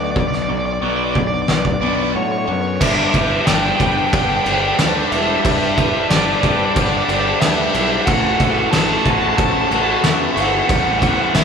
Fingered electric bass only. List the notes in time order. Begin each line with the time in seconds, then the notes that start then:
Already playing: D2
0.16 B1
0.50 B1
0.83 B1
1.49 B1
1.82 B1
2.15 A2
2.48 F#2
2.81 G1
3.14 G1
3.47 G1
3.80 G1
4.13 G1
4.46 G1
4.79 D2
5.12 E1
5.45 G2
6.11 G1
6.43 G2
6.76 G1
7.09 G1
7.42 D2
7.75 B1
8.07 A1
8.40 A1
8.73 A1
9.06 A1
9.38 A1
9.71 A1
10.04 E2
10.37 G1
10.69 A1
11.35 A1